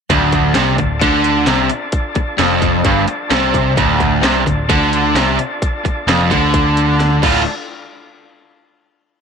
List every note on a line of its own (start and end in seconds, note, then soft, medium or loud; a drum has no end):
0.10 0.52 D1 loud
0.10 0.54 D2 loud
0.10 3.74 D4 medium
0.10 3.74 F4 medium
0.10 3.74 A4 medium
0.10 3.74 D5 medium
0.10 kick loud
0.10 closed hi-hat loud
0.32 kick medium
0.32 closed hi-hat medium
0.55 0.77 C2 loud
0.55 0.77 C3 loud
0.55 snare loud
0.55 closed hi-hat loud
0.78 1.00 D1 medium
0.78 0.97 D2 medium
0.78 kick medium
0.78 closed hi-hat medium
1.01 1.44 D2 loud
1.01 1.46 D3 medium
1.01 kick loud
1.01 closed hi-hat loud
1.24 closed hi-hat medium
1.47 1.68 C2 medium
1.47 1.69 C3 loud
1.47 snare medium
1.47 closed hi-hat loud
1.70 closed hi-hat medium
1.92 kick loud
1.92 closed hi-hat medium
2.15 muted picked electric bass stroke soft
2.15 muted overdriven electric guitar stroke medium
2.15 kick medium
2.15 closed hi-hat medium
2.38 2.82 F1 loud
2.38 2.84 F2 loud
2.38 snare loud
2.38 closed hi-hat medium
2.62 kick medium
2.62 snare soft
2.62 closed hi-hat medium
2.84 3.06 G1 medium
2.84 3.07 G2 medium
2.84 kick loud
2.84 closed hi-hat medium
3.07 muted overdriven electric guitar stroke medium
3.07 muted picked electric bass stroke soft
3.07 closed hi-hat medium
3.30 3.74 C2 loud
3.30 3.76 C3 loud
3.30 snare loud
3.30 closed hi-hat medium
3.54 kick medium
3.54 closed hi-hat medium
3.76 4.20 D1 loud
3.76 4.22 D2 loud
3.76 7.19 D4 medium
3.76 7.19 F4 medium
3.76 7.19 A4 medium
3.76 7.19 D5 medium
3.76 kick loud
3.76 closed hi-hat loud
4.00 kick medium
4.00 closed hi-hat medium
4.23 4.45 C2 medium
4.23 4.45 C3 loud
4.23 snare loud
4.23 closed hi-hat medium
4.47 4.68 D1 medium
4.47 4.65 D2 medium
4.47 kick medium
4.47 closed hi-hat medium
4.69 5.12 D2 loud
4.69 5.15 D3 loud
4.69 kick loud
4.69 closed hi-hat loud
4.93 closed hi-hat medium
5.15 5.37 C2 loud
5.15 5.38 C3 loud
5.15 snare loud
5.15 closed hi-hat medium
5.39 closed hi-hat medium
5.62 kick loud
5.62 closed hi-hat medium
5.85 muted overdriven electric guitar stroke medium
5.85 muted picked electric bass stroke soft
5.85 kick medium
5.85 closed hi-hat medium
6.07 6.29 F1 loud
6.07 6.31 F2 medium
6.07 snare loud
6.07 closed hi-hat medium
6.31 7.19 D2 loud
6.31 7.22 D3 loud
6.31 kick medium
6.31 closed hi-hat medium
6.54 kick loud
6.54 closed hi-hat medium
6.77 closed hi-hat medium
7.00 snare medium
7.00 closed hi-hat medium
7.22 7.44 D1 medium
7.22 7.42 D2 medium
7.22 7.42 A2 loud
7.22 7.42 D3 medium
7.22 7.42 A3 loud
7.22 7.55 D4 medium
7.22 7.55 F4 medium
7.22 7.42 F4 medium
7.22 7.55 A4 medium
7.22 7.55 D5 medium
7.22 kick loud
7.22 crash medium